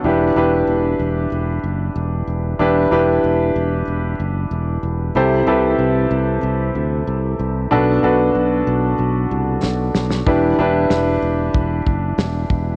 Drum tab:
SD |----------------|----------------|----------------|------------o-oo|
BD |----------------|----------------|----------------|----------------|

SD |----o-------o---|
BD |o-------o-o---o-|